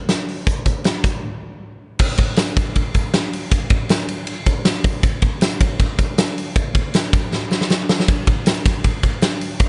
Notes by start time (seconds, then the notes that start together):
0.09 snare, closed hi-hat
0.28 open hi-hat
0.47 kick, closed hi-hat
0.65 kick, closed hi-hat
0.84 snare, closed hi-hat
1.03 kick, snare, closed hi-hat
1.99 kick, crash, tambourine
2.18 kick, ride
2.36 snare, ride, tambourine
2.57 kick, ride, tambourine
2.75 kick, ride
2.94 kick, ride, tambourine
3.14 snare, ride, tambourine
3.33 open hi-hat, ride, tambourine
3.51 kick, hi-hat pedal, ride, tambourine
3.70 kick, ride
3.89 snare, ride, tambourine
4.09 ride, tambourine
4.27 ride
4.46 kick, ride, tambourine
4.65 snare, ride, tambourine
4.84 kick, open hi-hat, ride, tambourine
5.03 kick, hi-hat pedal, ride, tambourine
5.22 kick, ride
5.41 snare, ride, tambourine
5.61 kick, ride, tambourine
5.80 kick, ride
5.98 kick, ride, tambourine
6.18 snare, ride, tambourine
6.38 open hi-hat, ride, tambourine
6.56 kick, hi-hat pedal, ride, tambourine
6.75 kick, ride
6.94 snare, ride, tambourine
7.13 kick, ride, tambourine
7.33 snare
7.51 snare, tambourine
7.61 snare
7.70 snare, tambourine
7.89 snare, tambourine
8.00 snare
8.08 kick, tambourine, crash
8.27 kick, ride, tambourine
8.46 snare, ride, tambourine
8.65 kick, snare, ride, tambourine
8.84 kick, ride, tambourine
9.03 kick, ride, tambourine
9.22 snare, ride, tambourine
9.41 open hi-hat, ride, tambourine
9.60 kick, hi-hat pedal, ride, tambourine